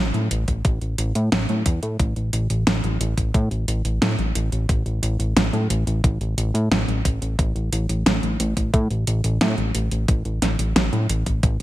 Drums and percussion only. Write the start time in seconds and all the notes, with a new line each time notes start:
0.14 closed hi-hat
0.31 closed hi-hat
0.48 kick, closed hi-hat
0.65 kick, closed hi-hat
0.81 closed hi-hat
0.98 closed hi-hat
1.15 closed hi-hat
1.32 snare, closed hi-hat
1.49 closed hi-hat
1.66 kick, closed hi-hat
1.83 closed hi-hat
1.99 kick, closed hi-hat
2.16 closed hi-hat
2.33 closed hi-hat
2.50 closed hi-hat
2.67 snare, closed hi-hat
2.84 closed hi-hat
3.01 closed hi-hat
3.18 kick, closed hi-hat
3.34 kick, closed hi-hat
3.51 closed hi-hat
3.68 closed hi-hat
3.85 closed hi-hat
4.02 snare, closed hi-hat
4.19 closed hi-hat
4.35 closed hi-hat
4.52 closed hi-hat
4.69 kick, closed hi-hat
4.86 closed hi-hat
5.03 closed hi-hat
5.20 closed hi-hat
5.37 snare, closed hi-hat
5.53 closed hi-hat
5.70 closed hi-hat
5.87 closed hi-hat
6.04 kick, closed hi-hat
6.21 closed hi-hat
6.38 closed hi-hat
6.55 closed hi-hat
6.72 snare, closed hi-hat
6.88 closed hi-hat
7.05 kick, closed hi-hat
7.22 closed hi-hat
7.39 kick, closed hi-hat
7.56 closed hi-hat
7.73 closed hi-hat
7.89 closed hi-hat
8.06 snare, closed hi-hat
8.23 closed hi-hat
8.40 closed hi-hat
8.57 kick, closed hi-hat
8.74 kick, closed hi-hat
8.91 closed hi-hat
9.07 closed hi-hat
9.24 closed hi-hat
9.41 snare, closed hi-hat
9.58 closed hi-hat
9.75 closed hi-hat
9.91 closed hi-hat
10.08 kick, closed hi-hat
10.25 closed hi-hat
10.42 snare, closed hi-hat
10.59 closed hi-hat
10.76 snare, closed hi-hat
10.93 closed hi-hat
11.09 closed hi-hat
11.26 kick, closed hi-hat
11.43 kick, closed hi-hat